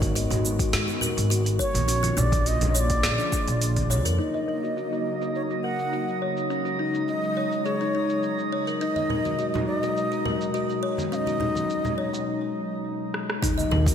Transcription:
Already playing: upright bass G#1, analog synth pad D#3 G#3 B3 F#4
0.02 kalimba F#4, kick, open hi-hat, high bongo, high conga, shaker
0.15 kalimba F#4, open hi-hat, shaker
0.30 upright bass G#1, kalimba F#4, open hi-hat, high bongo, low conga, shaker
0.45 shaker
0.59 kalimba F#4, kick, open hi-hat, high bongo, shaker
0.73 upright bass G#2, snare, open hi-hat, shaker
0.88 kalimba F#4, shaker
1.01 kalimba A#4, low conga, shaker
1.17 upright bass G#1, open hi-hat, shaker
1.30 kalimba F#4, open hi-hat, shaker
1.45 open hi-hat, high bongo, shaker
1.59 kalimba C#5, bansuri C#5, kick, high bongo, shaker
1.75 upright bass A#1, open hi-hat, high conga, shaker
1.88 analog synth pad D3 F3 A#3 F4, kalimba C#4, open hi-hat, shaker
2.03 kalimba F4, open hi-hat, high conga, shaker
2.17 upright bass A#1, kalimba D4, bansuri D5, low conga, shaker
2.32 kick, open hi-hat, high conga, shaker
2.46 bansuri D#5, open hi-hat, shaker
2.61 upright bass A#1, open hi-hat, high bongo, low conga, shaker
2.69 bansuri D#5
2.75 kalimba C#5, bansuri D#5, shaker
2.80 bansuri D5
2.90 kick, open hi-hat, high bongo, shaker
3.03 upright bass A#2, kalimba G#4, snare, open hi-hat, shaker
3.18 kalimba D4, shaker
3.32 kalimba D4, kick, shaker
3.48 upright bass A#1, open hi-hat, shaker
3.62 open hi-hat, shaker
3.77 kick, open hi-hat, high conga, shaker
3.90 kalimba C#5, high conga, low conga, shaker
4.05 upright bass F2, kalimba A#4, open hi-hat, shaker
4.18 analog synth pad C#3 F#3 A#3 D#4, kalimba D#4, synth texture D#5, bansuri D#5, shaker
4.34 kalimba D#5, shaker
4.48 kalimba A#4
4.63 kalimba F#4, shaker
4.77 kalimba F#4, shaker
4.93 kalimba F#4, shaker
5.22 kalimba F#4, shaker
5.35 bansuri C#5, shaker
5.50 kalimba F#4, shaker
5.63 kalimba A#4, bansuri F#5
5.79 shaker
5.93 kalimba F#4, shaker
6.08 shaker
6.22 kalimba C#5
6.37 shaker
6.50 analog synth pad G#3, kalimba C#4, shaker
6.65 kalimba F#4, shaker
6.79 kalimba D#4
6.94 shaker
7.08 bansuri D#5, shaker
7.23 shaker
7.37 kalimba C#5
7.52 shaker
7.65 kalimba G#4, bansuri C#5, shaker
7.81 kalimba D#4, shaker
7.95 kalimba D#4
8.10 shaker
8.23 shaker
8.39 shaker
8.52 kalimba C#5
8.67 kalimba A#4, shaker
8.80 analog synth pad B2 F#3 G#3, kalimba D#4, bansuri D#5, shaker
8.96 kalimba D#5, high conga, shaker
9.10 kalimba A#4, low conga
9.25 kalimba F#4, high conga, shaker
9.39 kalimba F#4, shaker
9.54 kalimba F#4, high bongo, low conga, shaker
9.67 bansuri D5
9.80 kalimba F#4, bansuri D#5, high bongo, shaker
9.97 shaker
10.12 kalimba F#4, shaker
10.25 kalimba A#4, low conga
10.41 shaker
10.54 kalimba F#4, shaker
10.70 high bongo, shaker
10.83 kalimba C#5
10.98 high conga, shaker
11.12 kalimba C#4, bansuri D#5 F5, shaker
11.27 kalimba F#4, high conga, shaker
11.40 kalimba D#4, low conga
11.55 high bongo, high conga, shaker
11.70 shaker
11.85 high bongo, low conga, shaker
11.98 kalimba C#5
12.13 high bongo, shaker
13.14 cross-stick
13.30 cross-stick
13.42 analog synth pad C#3 F#3 A#3 D#4, kalimba D#4, kick, open hi-hat, impact, shaker
13.58 kalimba D#5, high conga, shaker
13.71 upright bass D#2, kalimba A#4, high bongo, low conga
13.86 kalimba F#4, kick, open hi-hat, high conga, shaker

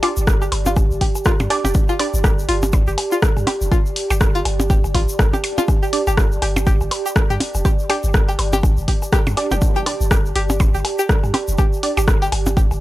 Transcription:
Already playing: ambient pad G4 D5 A5
0.03 synth stab D4 G4 D5, synth pluck F4, open hi-hat, percussion blips
0.17 sub bass G1, shaker
0.27 kick, cross-stick, shaker
0.42 synth pluck G4, percussion blips, shaker
0.52 sub bass G1, open hi-hat, percussion blips
0.66 synth pluck F4, percussion blips, shaker
0.76 kick, percussion blips, shaker
0.91 sub bass G1, shaker
1.01 synth pluck G4, kick, open hi-hat
1.15 percussion blips, shaker
1.25 synth pluck F4, kick, cross-stick, percussion blips, shaker
1.40 sub bass G2, percussion blips, shaker
1.50 synth stab D4 G4 D5, open hi-hat, percussion blips
1.65 sub bass F1, synth pluck G4, percussion blips, shaker
1.74 kick, shaker
1.89 synth pluck F4, percussion blips, shaker
1.99 synth stab D4 G4 D5, open hi-hat, percussion blips
2.14 sub bass G1, shaker
2.24 synth pluck G4, kick, cross-stick, percussion blips, shaker
2.39 shaker
2.49 sub bass G1, synth pluck F4, open hi-hat
2.62 percussion blips, shaker
2.73 kick, percussion blips, shaker
2.87 sub bass G1, synth pluck G4, shaker
2.98 open hi-hat, percussion blips
3.12 synth pluck F4, shaker
3.22 kick, cross-stick, shaker
3.37 sub bass G2, percussion blips, shaker
3.47 synth pluck G4, open hi-hat, percussion blips
3.61 sub bass F1, shaker
3.72 synth pluck F4, kick, percussion blips, shaker
3.86 shaker
3.96 open hi-hat
4.10 sub bass G1, synth pluck G4, percussion blips, shaker
4.21 kick, cross-stick, percussion blips, shaker
4.35 synth pluck F4, shaker
4.45 sub bass G1, open hi-hat, percussion blips
4.60 percussion blips, shaker
4.70 synth pluck G4, kick, shaker
4.84 sub bass G1, percussion blips, shaker
4.94 sub bass A#1, synth pluck F4, kick, open hi-hat, percussion blips
5.09 shaker
5.19 sub bass G1, kick, cross-stick, percussion blips, shaker
5.33 synth pluck G4, percussion blips, shaker
5.44 open hi-hat, percussion blips
5.58 synth pluck F4, percussion blips, shaker
5.68 kick, percussion blips, shaker
5.83 synth pluck G4, shaker
5.93 synth stab D4 G4 D5, open hi-hat
6.07 sub bass G1, synth pluck G4, percussion blips, shaker
6.17 kick, cross-stick, percussion blips, shaker
6.32 shaker
6.42 sub bass G1, synth pluck G4, open hi-hat, percussion blips
6.56 percussion blips, shaker
6.67 synth pluck G4, kick, shaker
6.81 sub bass G1, percussion blips, shaker
6.91 open hi-hat, percussion blips
7.06 synth pluck G4, shaker
7.16 kick, cross-stick, percussion blips, shaker
7.30 sub bass G2, synth pluck G4, shaker
7.40 open hi-hat, percussion blips
7.55 sub bass F1, percussion blips, shaker
7.65 synth pluck G4, kick, percussion blips, shaker
7.79 shaker
7.90 synth stab D4 G4 D5, synth pluck G4, open hi-hat, percussion blips
8.04 sub bass G1, shaker
8.14 kick, cross-stick, shaker
8.28 synth pluck G4, percussion blips, shaker
8.39 sub bass G1, open hi-hat, percussion blips
8.53 synth pluck G4, percussion blips, shaker
8.63 kick, percussion blips, shaker
8.77 sub bass G1, shaker
8.88 synth pluck G4, kick, open hi-hat
9.02 percussion blips, shaker
9.12 synth pluck G4, kick, cross-stick, percussion blips, shaker
9.27 sub bass G2, percussion blips, shaker
9.37 synth stab D4 G4 D5, open hi-hat, percussion blips
9.51 sub bass F1, synth pluck G4, zap, percussion blips, shaker
9.62 kick, shaker
9.76 synth pluck G4, percussion blips, shaker
9.86 synth stab D4 G4 D5, open hi-hat, percussion blips
10.01 sub bass G1, shaker
10.11 synth pluck G4, kick, cross-stick, percussion blips, shaker
10.26 shaker
10.35 sub bass G1, synth pluck G4, open hi-hat
10.49 percussion blips, shaker
10.60 kick, percussion blips, shaker
10.74 sub bass G1, synth pluck G4, shaker
10.85 open hi-hat, percussion blips
10.99 synth pluck G4, shaker
11.09 kick, cross-stick, shaker
11.24 sub bass G2, percussion blips, shaker
11.34 synth pluck G4, open hi-hat, percussion blips
11.48 sub bass F1, shaker
11.58 synth pluck G4, kick, percussion blips, shaker
11.73 shaker
11.83 synth stab D4 G4 D5, open hi-hat
11.97 sub bass G1, synth pluck G4, percussion blips, shaker
12.08 kick, cross-stick, percussion blips, shaker
12.22 synth pluck G4, shaker
12.32 sub bass G1, open hi-hat, percussion blips
12.46 percussion blips, shaker
12.57 synth pluck G4, kick, shaker
12.71 sub bass G1, percussion blips, shaker

